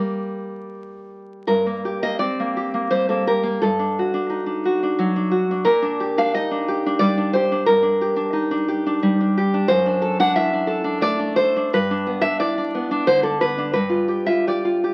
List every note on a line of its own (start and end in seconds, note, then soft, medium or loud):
0.00 1.45 G3 soft
0.00 1.45 A#3 soft
0.00 0.66 G4 medium
1.47 3.58 G2 medium
1.47 2.00 A#4 medium
1.66 2.01 A#3 soft
1.85 2.55 G4 medium
2.03 2.19 A#3 medium
2.03 2.19 D#5 loud
2.19 3.27 C4 soft
2.19 2.88 D5 medium
2.40 2.73 A#3 medium
2.57 2.91 G4 soft
2.74 3.08 A#3 medium
2.91 3.62 G3 medium
2.91 3.08 C5 loud
3.09 3.42 A#3 soft
3.09 3.27 A4 medium
3.27 3.63 G4 medium
3.27 3.61 A#4 medium
3.43 3.62 A#3 medium
3.62 5.62 G2 medium
3.62 5.27 A4 medium
3.79 4.13 D4 medium
3.99 4.64 F#4 medium
4.14 4.45 D4 medium
4.30 5.31 D#4 soft
4.46 4.82 D4 medium
4.65 5.30 F#4 medium
4.83 5.15 D4 medium
4.99 5.66 F#3 medium
5.16 5.50 D4 medium
5.31 5.66 F#4 medium
5.51 5.67 D4 medium
5.65 7.63 A#2 medium
5.65 6.14 A#4 loud
5.82 6.17 D4 medium
6.00 6.67 G4 medium
6.18 6.36 D4 medium
6.18 6.34 F5 loud
6.34 7.36 D#4 medium
6.34 6.99 D#5 loud
6.51 6.85 D4 medium
6.68 7.34 G4 medium
6.86 7.16 D4 medium
6.99 7.67 G3 medium
6.99 7.32 D5 loud
7.17 7.51 D4 medium
7.33 7.68 G4 medium
7.33 7.66 C5 loud
7.52 7.68 D4 medium
7.66 9.64 G2 medium
7.66 9.30 A#4 loud
7.83 8.15 D4 medium
8.01 8.67 G4 medium
8.16 8.50 D4 medium
8.33 9.34 D#4 medium
8.51 8.85 D4 medium
8.68 9.36 G4 medium
8.86 9.19 D4 medium
9.03 9.69 G3 medium
9.21 9.53 D4 medium
9.38 9.70 G4 medium
9.54 9.69 D4 medium
9.68 11.68 F#2 medium
9.68 10.16 C5 loud
9.86 10.18 D4 medium
10.02 10.20 A4 medium
10.20 10.52 D4 medium
10.20 10.35 F#5 loud
10.36 11.38 E4 medium
10.36 11.00 E5 loud
10.53 10.83 D4 medium
10.67 11.37 A4 medium
10.84 11.18 D4 medium
11.01 11.71 A3 medium
11.01 11.35 D5 loud
11.19 11.55 D4 medium
11.36 11.72 A4 medium
11.36 11.70 C5 loud
11.56 11.72 D4 medium
11.73 13.73 G2 medium
11.73 12.21 B4 loud
11.91 12.20 D4 medium
12.07 12.73 B3 medium
12.21 12.57 D4 medium
12.21 12.39 E5 loud
12.39 13.23 E4 medium
12.39 13.06 D5 loud
12.58 12.90 D4 medium
12.75 13.40 B3 medium
12.91 13.22 D4 medium
13.07 13.75 D3 medium
13.07 13.23 C5 loud
13.23 13.57 D4 medium
13.23 13.41 A4 medium
13.41 13.75 B3 medium
13.41 13.72 B4 loud
13.58 13.75 D4 medium
13.73 14.94 G2 medium
13.73 14.24 B4 loud
13.89 14.27 F4 medium
14.08 14.46 G4 medium
14.26 14.64 F4 medium
14.26 14.45 E5 loud
14.47 14.83 G4 soft
14.47 14.94 D5 medium
14.65 14.94 F4 medium
14.84 14.94 G4 medium